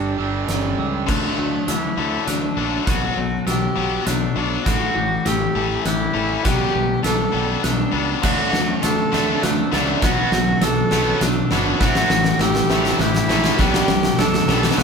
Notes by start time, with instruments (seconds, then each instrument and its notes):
Already playing: fingered electric bass G1, distorted electric guitar G2 D3 G3, clean electric guitar G3 D4 F#4, cello D4
0.18 fingered electric bass G1, distorted electric guitar D3 G3, clean electric guitar G3, glockenspiel E6
0.22 distorted electric guitar G2
0.48 fingered electric bass G1, cello C#4, snare, closed hi-hat
0.78 fingered electric bass C#2, clean electric guitar G3, glockenspiel E6
1.07 fingered electric bass D2, distorted electric guitar D3 F#3 A3, clean electric guitar D3, cello D4, glockenspiel F#6, kick, snare, crash
1.37 fingered electric bass D2, distorted electric guitar D3 F#3, clean electric guitar A3
1.67 fingered electric bass D2, distorted electric guitar D3 F#3, clean electric guitar D4, cello E4, glockenspiel E6, snare, closed hi-hat
1.97 fingered electric bass D2, clean electric guitar D3, distorted electric guitar D3 F#3 A3
2.27 fingered electric bass D2, distorted electric guitar D3 F#3, clean electric guitar A3, cello D4, glockenspiel F#6, snare, closed hi-hat
2.56 fingered electric bass A#1, distorted electric guitar D3 F#3 A3, clean electric guitar D4
2.86 fingered electric bass B1, distorted electric guitar B2 F#3 B3, clean electric guitar B2, cello F#4, glockenspiel F#6, kick, snare, closed hi-hat
3.17 fingered electric bass B1, distorted electric guitar B2 F#3, clean electric guitar A3
3.46 fingered electric bass B1, distorted electric guitar B2 F#3, clean electric guitar D4, cello G4, glockenspiel E6, snare, closed hi-hat
3.76 fingered electric bass B1, distorted electric guitar B2 F#3 B3, clean electric guitar F#3
4.06 fingered electric bass B1, distorted electric guitar B2 F#3, clean electric guitar A3, cello D4, glockenspiel F#6, snare, closed hi-hat
4.36 fingered electric bass B1, distorted electric guitar B2 F#3 B3, clean electric guitar D4
4.66 fingered electric bass A1, clean electric guitar A2, distorted electric guitar A2 E3 A3, cello F#4, glockenspiel F#6, kick, snare, closed hi-hat
4.95 fingered electric bass A1, distorted electric guitar A2 E3, clean electric guitar G3
5.25 fingered electric bass A1, distorted electric guitar A2 E3, clean electric guitar C#4, cello G4, glockenspiel E6, snare, closed hi-hat
5.55 fingered electric bass A1, distorted electric guitar A2 E3 A3, clean electric guitar E3
5.85 fingered electric bass A1, distorted electric guitar A2 E3, clean electric guitar G3, cello E4, glockenspiel F#6, snare, closed hi-hat
6.14 fingered electric bass A1, distorted electric guitar A2 E3 A3, clean electric guitar C#4
6.43 fingered electric bass B1, distorted electric guitar B2 G3 B3, clean electric guitar B2, cello G4, glockenspiel F#6, kick, snare, closed hi-hat
6.73 fingered electric bass B1, distorted electric guitar B2 G3, clean electric guitar B3
7.03 fingered electric bass B1, distorted electric guitar B2 G3, clean electric guitar D4, cello A4, glockenspiel E6, snare, closed hi-hat
7.32 fingered electric bass B1, distorted electric guitar B2 G3 B3, clean electric guitar G3
7.62 fingered electric bass B1, distorted electric guitar B2 G3, clean electric guitar B3, cello D4, glockenspiel F#6, snare, closed hi-hat
7.92 fingered electric bass C#2, distorted electric guitar B2 G3 B3, clean electric guitar D4
8.22 fingered electric bass D2, distorted electric guitar D3 F#3 A3 D4, clean electric guitar D3, cello F#4, glockenspiel F#6, kick, snare, crash
8.52 fingered electric bass D2, distorted electric guitar D3 F#3 A3, clean electric guitar A3, snare
8.82 fingered electric bass D2, distorted electric guitar D3 F#3 A3, clean electric guitar D4, cello A4, glockenspiel E6, snare, closed hi-hat
9.12 fingered electric bass D2, distorted electric guitar D3 F#3 A3 D4, clean electric guitar D3, snare
9.42 fingered electric bass D2, distorted electric guitar D3 F#3 A3, clean electric guitar A3, cello D4, glockenspiel F#6, snare, closed hi-hat
9.72 fingered electric bass C#2, distorted electric guitar D3 F#3 A3 D4, clean electric guitar D4, snare
10.01 fingered electric bass B1, distorted electric guitar B2 F#3 B3, clean electric guitar B2, cello F#4, glockenspiel F#6, kick, snare, closed hi-hat
10.32 fingered electric bass B1, distorted electric guitar B2 F#3, clean electric guitar A3, snare
10.61 fingered electric bass B1, distorted electric guitar B2 F#3, clean electric guitar D4, cello A4, glockenspiel E6, snare, closed hi-hat
10.91 fingered electric bass B1, distorted electric guitar B2 F#3 B3, clean electric guitar F#3, snare
11.21 fingered electric bass B1, distorted electric guitar B2 F#3, clean electric guitar A3, cello D4, glockenspiel F#6, snare, closed hi-hat
11.51 fingered electric bass G1, distorted electric guitar B2 F#3 B3, clean electric guitar D4, snare
11.80 fingered electric bass A1, distorted electric guitar A2 E3 A3, clean electric guitar A2, cello F#4, glockenspiel F#6, kick, snare
11.95 snare
12.10 fingered electric bass A1, distorted electric guitar A2 E3, clean electric guitar G3, snare
12.25 snare
12.39 fingered electric bass A1, distorted electric guitar A2 E3, clean electric guitar C#4, cello G4, glockenspiel E6, snare
12.55 snare
12.69 fingered electric bass A1, distorted electric guitar A2 E3 A3, clean electric guitar E3, snare
12.85 snare
12.99 fingered electric bass A1, distorted electric guitar A2 E3, clean electric guitar G3, cello E4, glockenspiel F#6, snare
13.15 snare
13.29 fingered electric bass A#1, distorted electric guitar A2 E3 A3, clean electric guitar C#4, snare
13.44 snare
13.59 fingered electric bass B1, distorted electric guitar G2 B2 D3 G3 B3, clean electric guitar B2, cello G4, glockenspiel F#6, kick, snare
13.74 snare
13.88 fingered electric bass B1, distorted electric guitar G2 B2 D3 G3, clean electric guitar B3, snare
14.03 snare
14.18 fingered electric bass B1, distorted electric guitar G2 B2 D3 G3, clean electric guitar D4, cello A4, glockenspiel E6, snare
14.34 snare
14.48 fingered electric bass B1, distorted electric guitar G2 B2 D3 G3 B3, clean electric guitar G3, snare
14.63 snare
14.71 snare
14.78 fingered electric bass B1, distorted electric guitar G2 B2 D3 G3, clean electric guitar B3, glockenspiel F#6, snare